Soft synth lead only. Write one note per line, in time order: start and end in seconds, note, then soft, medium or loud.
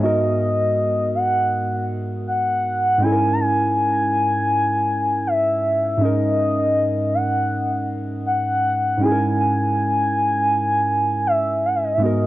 0.02 1.10 D#5 loud
1.15 1.85 F#5 loud
2.27 3.03 F#5 loud
3.02 3.32 G#5 loud
3.32 3.41 A#5 medium
3.40 5.29 G#5 loud
5.27 6.03 E5 loud
6.01 7.16 D#5 medium
7.14 7.89 F#5 loud
8.26 9.04 F#5 loud
9.02 9.39 G#5 loud
9.39 11.28 G#5 loud
11.27 11.67 E5 loud
11.66 11.77 F#5 medium
11.75 11.85 E5 medium
11.84 11.95 D#5 medium
11.94 12.01 E5 medium
12.02 12.27 D#5 medium